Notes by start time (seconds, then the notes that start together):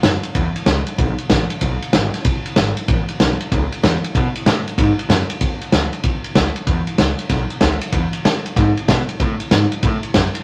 0.03 F#2, snare, ride
0.23 muted upright bass stroke, ride
0.35 E2, kick, ride
0.55 muted upright bass stroke, ride
0.66 C#2, snare, ride
0.87 muted upright bass stroke, ride
0.98 B1, kick, ride
1.18 muted upright bass stroke, ride
1.30 A1, kick, snare, ride
1.50 muted upright bass stroke, ride
1.61 B1, kick, ride
1.82 ride
1.93 G#1, snare, ride
2.14 muted upright bass stroke, snare, ride
2.25 B1, kick, ride
2.46 muted upright bass stroke, ride
2.56 G#1, snare, ride
2.77 muted upright bass stroke, ride
2.88 A1, kick, ride
3.09 muted upright bass stroke, ride
3.20 B1, snare, ride
3.41 muted upright bass stroke, ride
3.52 C#2, kick, ride
3.72 muted upright bass stroke, ride
3.83 E2, snare, ride
4.03 muted upright bass stroke, ride
4.15 B2, kick, ride
4.35 muted upright bass stroke, ride
4.46 A2, snare, ride
4.66 muted upright bass stroke, ride
4.78 G#2, kick, ride
4.98 muted upright bass stroke, ride
5.09 F#2, snare, ride
5.30 muted upright bass stroke, ride
5.41 E2, kick, ride
5.61 ride
5.72 D2, snare, ride
5.93 muted upright bass stroke, ride
6.04 C#2, kick, ride
6.24 muted upright bass stroke, ride
6.35 D2, kick, snare, ride
6.56 muted upright bass stroke, ride
6.67 E2, kick, ride
6.87 muted upright bass stroke, ride
6.98 C#2, snare, ride
7.19 muted upright bass stroke, ride
7.30 B1, kick, snare, ride
7.50 muted upright bass stroke, ride
7.61 D2, kick, snare, ride
7.81 muted upright bass stroke, ride
7.92 E2, kick, ride
8.13 muted upright bass stroke, ride
8.24 F#2, snare, ride
8.45 muted upright bass stroke, ride
8.56 G#2, kick, snare, ride
8.77 muted upright bass stroke, ride
8.88 B2, kick, snare, ride
9.08 muted upright bass stroke, ride
9.20 A2, kick, ride
9.40 muted upright bass stroke, ride
9.51 G#2, snare, ride
9.71 muted upright bass stroke, ride
9.83 A2, kick, ride
10.03 muted upright bass stroke, ride
10.14 F#2, kick, snare, ride
10.35 ride